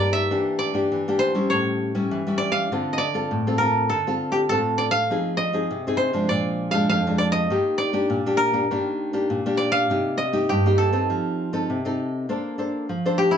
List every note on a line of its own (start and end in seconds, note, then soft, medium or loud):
0.00 0.28 G2 medium
0.00 0.27 A#3 medium
0.00 0.27 D#4 medium
0.00 0.27 G4 medium
0.00 1.53 A#4 medium
0.00 0.50 C5 medium
0.00 0.58 D5 medium
0.13 1.62 E5 loud
0.31 0.88 E3 medium
0.31 0.71 A#3 medium
0.31 0.72 D4 soft
0.31 0.72 G4 medium
0.59 1.56 D5 medium
0.74 1.00 A#3 medium
0.74 1.01 D4 medium
0.74 1.01 G4 medium
0.92 1.34 E3 medium
1.08 1.32 A#3 medium
1.08 1.33 D4 medium
1.08 1.33 G4 medium
1.19 1.56 C5 medium
1.35 1.91 G3 medium
1.35 1.91 C#4 medium
1.35 1.91 E4 medium
1.50 2.09 A2 medium
1.50 3.04 C#5 medium
1.95 2.21 G3 medium
1.95 2.21 C#4 medium
1.95 2.21 E4 medium
2.11 2.68 E3 medium
2.27 2.67 G3 medium
2.27 2.67 C#4 medium
2.27 2.67 E4 medium
2.38 2.97 D5 medium
2.52 3.96 F5 medium
2.72 3.28 D3 medium
2.72 3.00 C4 medium
2.72 3.00 F4 medium
2.72 3.00 A4 medium
2.93 3.04 D#5 medium
2.98 4.58 D5 loud
3.14 3.40 C4 medium
3.14 3.41 F4 medium
3.14 3.41 A4 medium
3.31 3.88 A2 medium
3.47 3.57 C4 medium
3.47 3.57 F4 medium
3.47 3.57 A4 medium
3.58 3.89 C4 medium
3.58 3.89 F4 medium
3.58 3.89 A4 medium
3.58 3.96 A#4 medium
3.90 4.48 D3 medium
3.90 4.49 A4 medium
4.07 4.47 C4 medium
4.07 4.47 F4 medium
4.07 4.47 A4 medium
4.32 4.38 G4 medium
4.49 5.08 A2 medium
4.49 4.90 C4 medium
4.49 4.89 F4 medium
4.49 4.58 A4 medium
4.49 4.90 A4 medium
4.78 4.84 D5 medium
4.91 6.35 F5 loud
5.10 5.67 F3 medium
5.10 5.39 C4 medium
5.10 5.39 D#4 soft
5.10 5.39 G#4 medium
5.37 6.35 D#5 medium
5.53 5.80 C4 medium
5.53 5.80 D#4 medium
5.53 5.80 G#4 medium
5.71 6.27 C3 medium
5.87 6.11 C4 medium
5.87 6.12 D#4 medium
5.87 6.12 G#4 medium
5.97 7.69 C5 medium
6.13 6.69 F3 medium
6.13 6.70 G#3 medium
6.13 6.70 D4 medium
6.29 6.87 A#2 medium
6.29 7.18 D5 medium
6.71 7.00 F3 medium
6.71 7.00 G#3 medium
6.71 7.00 D4 medium
6.71 6.89 F5 medium
6.89 7.47 F2 medium
6.89 8.34 F5 medium
7.07 7.46 F3 medium
7.07 7.46 G#3 medium
7.07 7.47 D4 medium
7.18 7.24 D5 medium
7.32 7.84 D#5 medium
7.50 8.07 D#3 medium
7.50 7.90 A#3 medium
7.50 7.91 G4 medium
7.78 9.38 D5 medium
7.93 8.19 A#3 medium
7.93 8.19 D4 medium
7.93 8.20 G4 medium
8.10 8.67 A#2 medium
8.26 8.51 A#3 medium
8.26 8.51 D4 medium
8.26 8.51 G4 medium
8.37 10.21 A#4 medium
8.53 8.64 A#3 medium
8.53 8.64 D4 medium
8.53 8.65 G4 medium
8.71 9.27 D#3 medium
8.71 9.11 A#3 medium
8.71 9.11 D4 medium
8.71 9.11 G4 medium
9.13 9.39 A#3 medium
9.13 9.39 D4 medium
9.13 9.39 G4 medium
9.30 9.87 A#2 medium
9.46 9.85 A#3 medium
9.46 9.86 D4 medium
9.46 9.86 G4 medium
9.57 10.24 D5 medium
9.72 11.16 F5 loud
9.90 10.47 C3 medium
9.90 10.18 A#3 medium
9.90 10.18 D#4 medium
9.90 10.18 G4 medium
10.18 11.72 D#5 medium
10.33 10.59 A#3 medium
10.33 10.59 D#4 medium
10.33 10.59 G4 medium
10.49 11.07 G2 medium
10.49 12.53 G4 medium
10.66 10.90 A#3 medium
10.66 10.91 D#4 medium
10.66 10.91 G4 medium
10.78 12.68 A4 medium
10.93 11.49 C4 medium
10.93 11.49 D#4 medium
10.93 11.49 A4 medium
11.10 11.67 F3 medium
11.53 11.79 C4 medium
11.53 11.79 D#4 medium
11.53 11.79 A4 medium
11.70 12.26 C3 medium
11.85 12.25 C4 medium
11.85 12.25 D#4 medium
11.85 12.25 A4 medium
12.29 12.86 A#3 medium
12.29 12.54 D4 medium
12.29 12.55 A4 medium
12.29 12.55 C5 medium
12.58 12.87 D4 soft
12.58 12.87 A4 soft
12.58 12.87 C5 medium
12.89 13.38 F3 medium
13.05 13.38 D4 medium
13.05 13.38 A4 medium
13.05 13.38 C5 medium
13.18 13.38 G4 medium
13.31 13.38 E4 medium